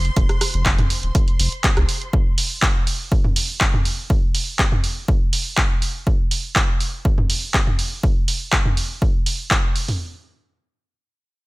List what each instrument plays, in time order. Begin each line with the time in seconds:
Already playing: sub bass F1, string machine C6
0.05 closed hi-hat
0.16 sub bass F1, kick, closed hi-hat
0.29 cross-stick, closed hi-hat
0.41 cross-stick, open hi-hat
0.54 sub bass F1, closed hi-hat
0.66 kick, clap, closed hi-hat
0.79 closed hi-hat, mid tom
0.90 open hi-hat
1.03 sub bass D#1, closed hi-hat
1.15 kick, closed hi-hat
1.28 closed hi-hat
1.39 sub bass F1, open hi-hat
1.52 closed hi-hat
1.64 kick, clap, closed hi-hat
1.77 sub bass C2, cross-stick, closed hi-hat
1.89 open hi-hat
2.02 closed hi-hat
2.13 kick
2.38 open hi-hat
2.62 kick, clap
2.87 open hi-hat
3.12 kick
3.24 mid tom
3.36 open hi-hat
3.61 kick, clap
3.74 mid tom
3.85 open hi-hat
4.10 kick
4.35 open hi-hat
4.59 kick, clap
4.72 mid tom
4.84 open hi-hat
5.08 kick
5.33 open hi-hat
5.57 kick, clap
5.82 open hi-hat
6.07 kick
6.31 open hi-hat
6.56 kick, clap
6.80 open hi-hat
7.05 kick
7.18 mid tom
7.30 open hi-hat
7.54 kick, clap
7.67 mid tom
7.79 open hi-hat
8.03 kick
8.28 open hi-hat
8.53 kick, clap
8.65 mid tom
8.77 open hi-hat
9.02 kick
9.26 open hi-hat
9.51 kick, clap
9.76 open hi-hat
9.88 mid tom, open hi-hat